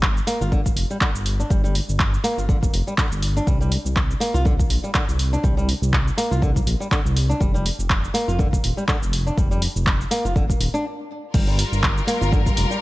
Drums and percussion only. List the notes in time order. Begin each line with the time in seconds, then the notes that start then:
0.03 kick, clap, shaker
0.17 shaker
0.27 open hi-hat, shaker
0.42 shaker
0.52 kick, shaker
0.66 kick, shaker
0.77 open hi-hat, shaker
0.91 shaker
1.01 kick, clap, shaker
1.15 shaker
1.26 open hi-hat, shaker
1.40 shaker
1.51 kick, shaker
1.65 shaker
1.75 open hi-hat, shaker
1.89 shaker
2.00 kick, clap, shaker
2.14 shaker
2.24 open hi-hat, shaker
2.39 shaker
2.49 kick, shaker
2.63 kick, shaker
2.74 open hi-hat, shaker
2.88 shaker
2.98 kick, clap, shaker
3.12 shaker
3.22 open hi-hat, shaker
3.37 shaker
3.47 kick, shaker
3.62 shaker
3.72 open hi-hat, shaker
3.86 shaker
3.96 kick, clap, shaker
4.11 shaker
4.21 open hi-hat, shaker
4.35 shaker
4.46 kick, shaker
4.59 kick, shaker
4.70 open hi-hat, shaker
4.84 shaker
4.95 kick, clap, shaker
5.09 shaker
5.19 open hi-hat, shaker
5.34 shaker
5.44 kick, shaker
5.59 shaker
5.69 open hi-hat, shaker
5.83 shaker
5.93 kick, clap, shaker
6.08 shaker
6.18 open hi-hat, shaker
6.32 shaker
6.42 kick, shaker
6.56 kick, shaker
6.67 open hi-hat, shaker
6.82 shaker
6.92 kick, clap, shaker
7.06 shaker
7.17 open hi-hat, shaker
7.31 shaker
7.41 kick, shaker
7.56 shaker
7.66 open hi-hat, shaker
7.80 shaker
7.90 kick, clap, shaker
8.04 shaker
8.15 open hi-hat, shaker
8.29 shaker
8.39 kick, shaker
8.53 kick, shaker
8.64 open hi-hat, shaker
8.78 shaker
8.88 kick, clap, shaker
9.03 shaker
9.13 open hi-hat, shaker
9.27 shaker
9.38 kick, shaker
9.52 shaker
9.62 open hi-hat, shaker
9.76 shaker
9.87 kick, clap, shaker
10.01 shaker
10.11 open hi-hat, shaker
10.26 shaker
10.36 kick, shaker
10.50 kick, shaker
10.61 open hi-hat, shaker
10.75 shaker
11.34 kick, crash, shaker
11.48 shaker
11.59 open hi-hat, shaker
11.73 shaker
11.83 kick, clap, shaker
11.98 shaker
12.08 open hi-hat, shaker
12.22 shaker
12.33 kick, shaker
12.46 kick, shaker
12.57 open hi-hat, shaker
12.71 shaker